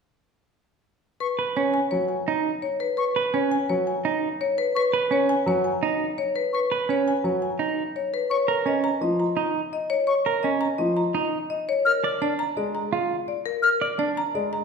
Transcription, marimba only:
1.20 1.44 B4 medium
1.56 1.79 C#5 soft
1.74 1.97 G#5 medium
1.91 2.15 C#5 medium
2.08 2.32 G#5 soft
2.62 2.86 C#5 medium
2.80 2.96 B4 medium
2.97 3.21 B4 medium
3.34 3.57 C#5 medium
3.52 3.75 G#5 medium
3.69 3.92 C#5 soft
3.87 4.10 G#5 medium
4.41 4.64 C#5 medium
4.58 4.75 B4 medium
4.76 4.99 B4 medium
5.12 5.35 C#5 medium
5.29 5.52 G#5 medium
5.48 5.70 C#5 medium
5.64 5.88 G#5 medium
6.18 6.41 C#5 medium
6.36 6.53 B4 medium
6.55 6.77 B4 medium
6.90 7.12 C#5 medium
7.08 7.30 G#5 medium
7.25 7.48 C#5 soft
7.42 7.65 G#5 soft
7.96 8.19 C#5 soft
8.14 8.36 B4 medium
8.31 8.54 C#5 medium
8.67 8.90 D#5 medium
8.84 9.07 A#5 medium
9.02 9.25 D#5 soft
9.20 9.43 A#5 soft
9.73 9.96 D#5 medium
9.90 10.06 C#5 medium
10.07 10.31 C#5 medium
10.43 10.67 D#5 medium
10.61 10.84 A#5 medium
10.78 11.02 D#5 medium
10.97 11.20 A#5 medium
11.50 11.73 D#5 medium
11.69 11.91 C#5 medium
11.87 12.09 A#4 medium
12.22 12.45 D5 medium
12.39 12.62 A#5 medium
12.57 12.80 D5 soft
12.75 12.98 A#5 medium
13.28 13.51 D5 medium
13.46 13.63 A#4 medium
13.64 13.87 A#4 medium
13.99 14.22 D5 medium
14.17 14.40 A#5 medium
14.35 14.58 D5 medium
14.53 14.64 A#5 medium

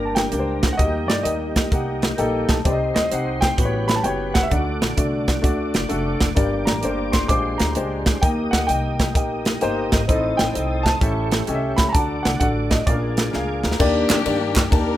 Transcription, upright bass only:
0.00 0.25 G1 medium
0.32 0.58 C#2 medium
0.64 0.77 D2 medium
0.79 1.09 D#2 medium
1.09 1.23 G2 medium
1.25 1.65 D#2 medium
1.72 2.12 C2 medium
2.19 2.45 A#1 medium
2.49 2.63 B1 medium
2.66 2.91 C2 medium
2.96 3.10 D2 medium
3.12 3.52 C2 medium
3.58 3.98 A1 loud
4.04 4.44 F#1 loud
4.52 4.77 D2 loud
4.81 4.95 A#1 medium
4.98 5.37 C2 medium
5.44 5.76 D2 medium
5.75 5.88 G1 medium
5.91 6.16 F1 medium
6.21 6.35 F#1 medium
6.37 6.63 G1 loud
6.67 6.81 A1 medium
6.83 7.23 G1 medium
7.29 7.55 A#1 medium
7.60 7.74 D2 medium
7.76 8.02 C#2 medium
8.07 8.21 D2 medium
8.23 8.49 D#2 loud
8.53 8.67 D2 medium
8.69 9.15 C2 medium
9.15 9.55 A#1 medium
9.63 9.88 G1 medium
9.93 10.07 G#1 medium
10.09 10.35 A1 medium
10.40 10.53 A#1 medium
10.56 10.95 C2 medium
11.01 11.41 A1 medium
11.48 11.74 C2 medium
11.79 11.92 C#2 medium
11.94 12.20 D2 medium
12.25 12.39 C2 medium
12.41 12.80 A1 medium
12.87 13.27 A#1 loud
13.35 13.60 C#2 medium
13.65 13.78 D2 medium
13.80 14.06 D#2 loud
14.10 14.24 F2 medium
14.26 14.65 G2 loud
14.72 14.97 D#2 loud

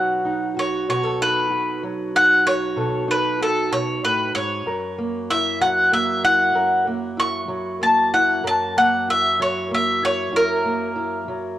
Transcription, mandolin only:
0.00 0.54 F#5 medium
0.59 0.88 C#5 medium
0.90 1.19 C#5 medium
1.22 1.82 B4 loud
2.16 2.46 F#5 loud
2.47 3.07 C#5 loud
3.11 3.40 B4 medium
3.42 3.72 A4 medium
3.72 4.02 C#5 medium
4.04 4.34 B4 medium
4.35 4.96 C#5 medium
5.30 5.60 E5 loud
5.61 5.92 F#5 medium
5.93 6.23 E5 medium
6.25 6.85 F#5 loud
7.20 7.80 C#6 loud
7.83 8.13 A5 medium
8.14 8.44 F#5 medium
8.47 8.76 A5 medium
8.78 9.07 F#5 medium
9.10 9.39 E5 loud
9.42 9.71 C#5 medium
9.74 10.03 E5 medium
10.05 10.34 C#5 loud
10.36 11.59 A#4 medium

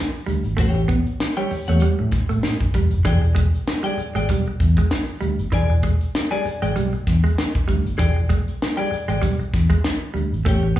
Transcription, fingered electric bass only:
0.28 0.41 D2 medium
0.45 0.55 G#1 medium
0.58 0.95 A1 loud
1.51 muted fingered electric bass stroke soft
1.68 1.79 E2 medium
2.00 2.10 A2 loud
2.30 2.41 A2 loud
2.60 2.71 F#1 medium
2.74 2.88 E1 medium
2.92 3.03 F#1 medium
3.05 3.42 E1 loud
3.97 muted fingered electric bass stroke soft
4.15 4.26 G#1 medium
4.29 4.42 B1 loud
4.61 4.74 E2 medium
5.22 5.35 D2 medium
5.39 5.49 G1 medium
5.52 5.89 E1 loud
6.45 muted fingered electric bass stroke soft
6.62 6.73 G#1 medium
6.76 6.89 B1 loud
7.07 7.20 E2 medium
7.69 7.82 D2 medium
7.84 7.99 G1 medium
7.99 8.36 E1 loud
8.91 muted fingered electric bass stroke soft
9.08 9.19 G#1 loud
9.23 9.36 B1 loud
9.53 9.67 E2 medium
10.14 10.28 D2 medium
10.32 10.42 G#1 medium
10.46 10.80 A1 medium

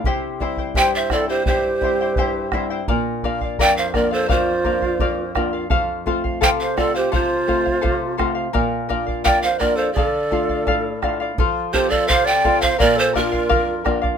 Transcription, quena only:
0.77 0.93 C5 medium
0.94 1.15 C5 medium
0.94 0.99 D5 medium
1.13 1.28 A4 medium
1.29 1.45 G4 medium
1.46 2.48 G4 medium
3.60 3.76 D5 medium
3.78 3.94 C5 medium
3.95 4.11 A#4 medium
4.12 4.28 A4 medium
4.30 5.32 F4 medium
6.42 6.48 C5 medium
6.61 6.77 C5 medium
6.79 6.95 A4 medium
6.97 7.12 G4 medium
7.15 8.16 F4 medium
9.25 9.42 D5 medium
9.44 9.61 C5 medium
9.60 9.77 A#4 medium
9.76 9.93 A4 medium
9.94 10.06 G#4 medium
10.06 10.97 A4 medium
11.73 11.92 G4 medium
11.90 12.10 A4 medium
12.09 12.26 C5 medium
12.25 12.63 D5 medium
12.61 12.79 C5 medium
12.80 12.97 A#4 medium
12.96 13.15 A4 medium
13.15 13.21 G4 medium
13.20 13.83 F4 medium

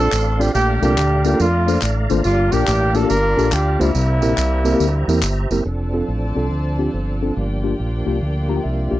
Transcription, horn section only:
0.00 0.51 C4 medium
0.00 0.51 D4 medium
0.00 0.37 A4 loud
0.40 0.54 G4 medium
0.55 0.82 D4 medium
0.55 0.81 G4 loud
0.83 1.40 D4 medium
0.83 1.22 G4 medium
1.25 1.39 G4 medium
1.40 2.08 A3 medium
1.40 2.08 D4 medium
1.40 1.83 F4 medium
2.25 2.52 A#3 medium
2.25 2.52 D4 medium
2.25 2.51 F4 loud
2.53 3.34 A#3 medium
2.53 3.09 D4 medium
2.53 2.95 G4 loud
2.95 3.10 A4 loud
3.09 3.91 D4 medium
3.09 3.91 F4 medium
3.09 3.49 A#4 loud
3.52 3.80 G4 loud
3.80 5.47 G3 medium
3.80 5.47 A#3 medium
3.80 5.50 E4 loud

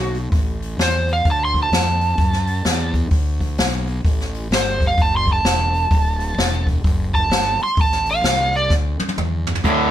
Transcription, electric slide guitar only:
0.00 0.17 F#4 loud
0.83 1.11 C5 loud
1.13 1.27 F5 medium
1.31 1.44 A5 medium
1.45 1.58 C6 medium
1.63 2.96 A5 medium
4.55 4.83 C5 medium
4.87 5.00 F5 medium
5.02 5.15 A5 medium
5.17 5.31 C6 medium
5.33 6.67 A5 loud
7.15 7.60 A5 loud
7.63 7.79 C6 medium
7.81 8.08 A5 medium
8.11 8.25 F5 loud
8.27 8.54 F5 medium
8.56 8.72 D5 loud

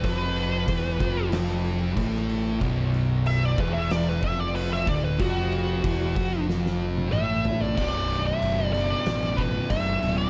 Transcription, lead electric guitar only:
0.04 1.29 B4 loud
3.27 3.45 E5 loud
3.45 3.60 D5 loud
3.60 3.73 B4 medium
3.74 3.91 E5 loud
3.91 4.09 D5 loud
4.09 4.23 B4 loud
4.24 4.39 E5 loud
4.39 4.55 D5 medium
4.56 4.71 B4 medium
4.73 4.88 E5 loud
4.89 5.04 D5 loud
5.04 5.19 B4 loud
5.20 6.45 F#4 loud
7.12 7.61 E5 medium
7.61 7.76 D5 medium
7.77 8.26 D5 loud
8.26 8.73 E5 medium
8.73 9.40 D5 medium
9.37 9.71 B4 medium
9.70 10.15 E5 loud
10.18 10.30 D5 medium

